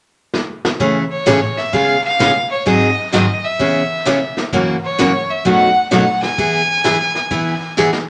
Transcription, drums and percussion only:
0.34 snare
0.65 snare
0.80 brush sweep, kick
1.27 snare, hi-hat pedal
1.57 snare
1.73 brush sweep, kick
2.20 snare, hi-hat pedal
2.67 brush sweep, kick
3.14 snare, hi-hat pedal
3.60 brush sweep, kick
4.07 snare, hi-hat pedal
4.37 snare
4.52 brush sweep, kick
4.99 snare, hi-hat pedal
5.45 brush sweep, kick
5.92 snare, hi-hat pedal
6.23 snare
6.38 brush sweep, kick
6.84 snare, hi-hat pedal
7.15 snare
7.31 brush sweep, kick
7.78 snare, hi-hat pedal
7.93 snare

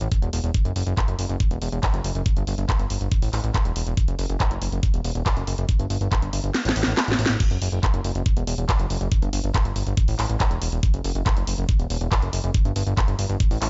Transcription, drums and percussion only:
0.01 closed hi-hat
0.12 kick, closed hi-hat
0.22 closed hi-hat
0.33 open hi-hat
0.44 closed hi-hat
0.54 kick, closed hi-hat
0.65 closed hi-hat
0.76 open hi-hat
0.87 closed hi-hat
0.97 kick, clap, closed hi-hat
1.08 closed hi-hat
1.19 open hi-hat
1.29 closed hi-hat
1.40 kick, closed hi-hat
1.51 closed hi-hat
1.62 open hi-hat
1.72 closed hi-hat
1.83 kick, clap, closed hi-hat
1.94 closed hi-hat
2.04 open hi-hat
2.15 closed hi-hat
2.26 kick, closed hi-hat
2.37 closed hi-hat
2.47 open hi-hat
2.58 closed hi-hat
2.69 kick, clap, closed hi-hat
2.79 closed hi-hat
2.90 open hi-hat
3.01 closed hi-hat
3.12 kick, closed hi-hat
3.22 open hi-hat
3.33 clap, open hi-hat
3.44 closed hi-hat
3.54 kick, clap, closed hi-hat
3.65 closed hi-hat
3.76 open hi-hat
3.87 closed hi-hat
3.97 kick, closed hi-hat
4.08 closed hi-hat
4.19 open hi-hat
4.29 closed hi-hat
4.40 kick, clap, closed hi-hat
4.51 closed hi-hat
4.62 open hi-hat
4.72 closed hi-hat
4.83 kick, closed hi-hat
4.94 closed hi-hat
5.04 open hi-hat
5.15 closed hi-hat
5.26 kick, clap, closed hi-hat
5.37 closed hi-hat
5.47 open hi-hat
5.58 closed hi-hat
5.69 kick, closed hi-hat
5.79 closed hi-hat
5.90 open hi-hat
6.01 closed hi-hat
6.12 kick, clap, closed hi-hat
6.22 closed hi-hat
6.33 open hi-hat
6.44 closed hi-hat
6.54 snare, closed hi-hat
6.65 snare, open hi-hat
6.76 open hi-hat
6.83 snare, closed hi-hat
6.97 snare, clap, closed hi-hat
7.08 snare, closed hi-hat
7.19 open hi-hat
7.26 snare, closed hi-hat
7.40 kick, closed hi-hat, crash
7.51 closed hi-hat
7.62 open hi-hat
7.72 closed hi-hat
7.83 kick, clap, closed hi-hat
7.94 closed hi-hat
8.04 open hi-hat
8.15 closed hi-hat
8.26 kick, closed hi-hat
8.37 closed hi-hat
8.47 open hi-hat
8.58 closed hi-hat
8.69 kick, clap, closed hi-hat
8.79 closed hi-hat
8.90 open hi-hat
9.01 closed hi-hat
9.12 kick, closed hi-hat
9.22 closed hi-hat
9.33 open hi-hat
9.44 closed hi-hat
9.54 kick, clap, closed hi-hat
9.65 closed hi-hat
9.76 open hi-hat
9.87 closed hi-hat
9.97 kick, closed hi-hat
10.08 open hi-hat
10.19 clap, open hi-hat
10.29 closed hi-hat
10.40 kick, clap, closed hi-hat
10.51 closed hi-hat
10.62 open hi-hat
10.72 closed hi-hat
10.83 kick, closed hi-hat
10.94 closed hi-hat
11.04 open hi-hat
11.15 closed hi-hat
11.26 kick, clap, closed hi-hat
11.37 closed hi-hat
11.47 open hi-hat
11.58 closed hi-hat
11.69 kick, closed hi-hat
11.79 closed hi-hat
11.90 open hi-hat
12.01 closed hi-hat
12.12 kick, clap, closed hi-hat
12.22 closed hi-hat
12.33 open hi-hat
12.44 closed hi-hat
12.54 kick, closed hi-hat
12.65 closed hi-hat
12.76 open hi-hat
12.87 closed hi-hat
12.97 kick, clap, closed hi-hat
13.08 closed hi-hat
13.19 open hi-hat
13.29 closed hi-hat
13.40 kick, closed hi-hat
13.51 open hi-hat
13.62 clap, open hi-hat

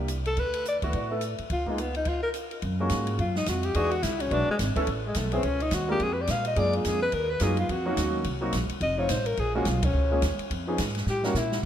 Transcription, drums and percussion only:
0.08 hi-hat pedal, ride
0.25 ride
0.37 kick, ride
0.53 ride
0.65 hi-hat pedal
0.82 kick, ride
0.93 kick, ride
1.21 hi-hat pedal, ride
1.38 ride
1.50 kick, ride
1.67 kick
1.78 hi-hat pedal, ride
1.95 ride
2.05 kick, crash, ride
2.34 hi-hat pedal, ride
2.51 ride
2.62 kick, ride
2.89 kick, snare, hi-hat pedal, ride
3.07 ride
3.19 kick, ride
3.36 snare
3.46 kick, snare, hi-hat pedal, ride
3.63 ride
3.74 kick, ride
3.91 ride
4.03 kick, snare, hi-hat pedal, ride
4.20 ride
4.31 kick, ride
4.59 kick, snare, hi-hat pedal, ride
4.76 kick, ride
4.87 kick, ride
5.14 kick, snare, hi-hat pedal, ride
5.32 ride
5.43 kick, ride
5.60 ride
5.71 kick, snare, hi-hat pedal, ride
6.00 kick, ride
6.27 kick, snare, hi-hat pedal, ride
6.45 ride
6.56 kick, ride
6.73 ride
6.84 kick, snare, hi-hat pedal, ride
7.12 kick, ride
7.40 kick, snare, hi-hat pedal, ride
7.57 ride
7.69 kick, ride
7.97 kick, snare, hi-hat pedal, ride
8.24 kick, ride
8.53 kick, snare, hi-hat pedal, ride
8.69 ride
8.81 kick, ride
9.09 kick, snare, hi-hat pedal, ride
9.26 ride
9.37 kick, ride
9.65 kick, snare, hi-hat pedal, ride
9.83 kick, ride
10.22 kick, snare, hi-hat pedal, ride
10.39 ride
10.51 kick, ride
10.78 kick, snare, hi-hat pedal, ride
10.88 snare
10.95 snare, ride
11.07 snare
11.23 snare
11.35 snare, hi-hat pedal
11.52 snare

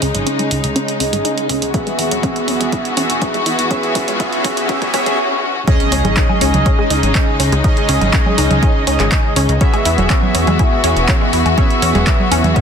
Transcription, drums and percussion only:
0.02 open hi-hat
0.15 closed hi-hat, low conga
0.27 closed hi-hat
0.39 closed hi-hat
0.51 open hi-hat
0.64 closed hi-hat
0.76 closed hi-hat
0.88 closed hi-hat
1.00 open hi-hat
1.13 closed hi-hat
1.25 closed hi-hat
1.38 closed hi-hat
1.49 open hi-hat
1.62 closed hi-hat
1.74 kick, closed hi-hat
1.87 closed hi-hat
1.99 open hi-hat
2.11 closed hi-hat, low conga
2.23 kick, closed hi-hat
2.36 closed hi-hat
2.48 open hi-hat, low conga
2.61 closed hi-hat
2.72 kick, closed hi-hat
2.85 closed hi-hat
2.97 open hi-hat
3.10 closed hi-hat
3.22 kick, closed hi-hat
3.34 closed hi-hat
3.46 open hi-hat
3.59 closed hi-hat
3.71 kick, closed hi-hat
3.83 closed hi-hat
3.95 kick, open hi-hat
4.08 closed hi-hat, low conga
4.20 kick, closed hi-hat
4.33 closed hi-hat
4.45 kick, open hi-hat
4.57 closed hi-hat
4.69 kick, closed hi-hat
4.82 kick, closed hi-hat
4.94 kick, open hi-hat
5.06 kick, closed hi-hat
5.68 kick, closed hi-hat
5.80 closed hi-hat
5.92 open hi-hat
6.05 closed hi-hat, low conga
6.17 kick, clap, closed hi-hat
6.29 low conga, low woodblock
6.41 open hi-hat
6.54 closed hi-hat, low conga
6.66 kick, closed hi-hat
6.90 open hi-hat
7.03 closed hi-hat
7.15 kick, clap, closed hi-hat, low woodblock
7.40 open hi-hat
7.52 closed hi-hat
7.64 kick, closed hi-hat
7.77 closed hi-hat
7.89 open hi-hat
8.01 closed hi-hat, low conga, low woodblock
8.13 kick, clap, closed hi-hat
8.26 low conga
8.38 open hi-hat
8.51 closed hi-hat, low conga
8.63 kick, closed hi-hat
8.87 open hi-hat, low woodblock
9.00 clap, closed hi-hat
9.12 kick, clap, closed hi-hat
9.36 open hi-hat
9.49 closed hi-hat
9.61 kick, closed hi-hat
9.74 closed hi-hat, low woodblock
9.85 open hi-hat
9.98 closed hi-hat, low conga
10.10 kick, clap, closed hi-hat
10.23 low conga
10.35 open hi-hat
10.47 closed hi-hat, low conga
10.59 kick, closed hi-hat, low woodblock
10.84 open hi-hat
10.97 closed hi-hat
11.09 kick, clap, closed hi-hat
11.33 open hi-hat
11.46 closed hi-hat, low woodblock
11.58 kick, closed hi-hat
11.70 closed hi-hat
11.82 open hi-hat
11.95 closed hi-hat, low conga
12.07 kick, clap, closed hi-hat
12.20 low conga
12.32 open hi-hat, low woodblock
12.44 closed hi-hat, low conga
12.56 kick, closed hi-hat

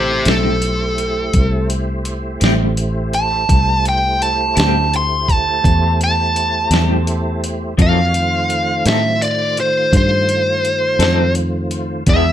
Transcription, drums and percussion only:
0.25 snare, closed hi-hat
0.62 closed hi-hat
0.98 closed hi-hat
1.33 kick, closed hi-hat
1.70 closed hi-hat
2.05 closed hi-hat
2.41 snare, closed hi-hat
2.77 closed hi-hat
3.13 closed hi-hat
3.49 kick, closed hi-hat
3.85 closed hi-hat
4.22 closed hi-hat
4.57 snare, closed hi-hat
4.93 closed hi-hat
5.28 kick, closed hi-hat
5.64 kick, closed hi-hat
6.01 closed hi-hat
6.36 closed hi-hat
6.71 snare, closed hi-hat
7.07 closed hi-hat
7.44 closed hi-hat
7.79 kick, closed hi-hat
8.14 closed hi-hat
8.50 closed hi-hat
8.86 snare, closed hi-hat
9.22 closed hi-hat
9.57 closed hi-hat
9.93 kick, closed hi-hat
10.29 closed hi-hat
10.65 closed hi-hat
11.00 snare, closed hi-hat
11.35 closed hi-hat
11.71 closed hi-hat
12.07 kick, closed hi-hat

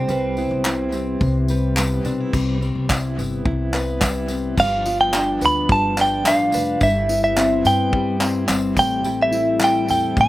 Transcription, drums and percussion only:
0.09 tambourine
0.37 tambourine
0.65 clap, tambourine
0.92 tambourine
1.21 kick, tambourine
1.48 tambourine
1.77 clap, tambourine
2.05 tambourine
2.33 kick, crash, tambourine
2.62 tambourine
2.90 kick, clap, tambourine
3.19 tambourine
3.46 kick
3.74 clap, tambourine
4.01 kick, clap, tambourine
4.28 tambourine
4.58 kick, crash, tambourine
4.86 tambourine
5.13 clap, tambourine
5.41 tambourine
5.69 kick, tambourine
5.97 clap, tambourine
6.25 clap, tambourine
6.52 tambourine
6.54 tambourine
6.81 kick, tambourine
7.09 tambourine
7.37 clap, tambourine
7.65 tambourine
7.93 kick
8.21 clap, tambourine
8.48 clap, tambourine
8.77 kick, tambourine
9.04 tambourine
9.32 tambourine
9.60 clap, tambourine
9.88 tambourine
9.91 tambourine
10.17 kick, tambourine

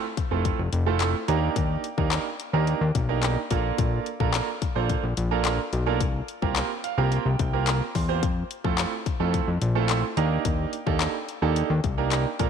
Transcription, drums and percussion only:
0.17 kick, closed hi-hat
0.45 kick, closed hi-hat
0.73 closed hi-hat
1.00 clap, closed hi-hat
1.28 closed hi-hat
1.56 kick, closed hi-hat
1.84 closed hi-hat
1.98 kick
2.12 clap, closed hi-hat
2.40 closed hi-hat
2.67 closed hi-hat
2.95 kick, closed hi-hat
3.23 clap, closed hi-hat
3.51 kick, closed hi-hat
3.78 kick, closed hi-hat
4.06 closed hi-hat
4.20 kick
4.34 clap, closed hi-hat
4.62 kick, closed hi-hat
4.90 kick, closed hi-hat
5.17 closed hi-hat
5.45 clap, closed hi-hat
5.73 closed hi-hat
6.01 kick, closed hi-hat
6.28 closed hi-hat
6.42 kick
6.56 clap, closed hi-hat
6.84 closed hi-hat
7.12 closed hi-hat
7.39 kick, closed hi-hat
7.67 clap, closed hi-hat
7.95 kick, open hi-hat
8.23 kick, closed hi-hat
8.51 closed hi-hat
8.65 kick
8.78 clap, closed hi-hat
9.06 kick, closed hi-hat
9.34 kick, closed hi-hat
9.62 closed hi-hat
9.89 clap, closed hi-hat
10.17 closed hi-hat
10.45 kick, closed hi-hat
10.73 closed hi-hat
10.87 kick
11.01 clap, closed hi-hat
11.29 closed hi-hat
11.56 closed hi-hat
11.84 kick, closed hi-hat
12.11 clap, closed hi-hat
12.39 kick, closed hi-hat

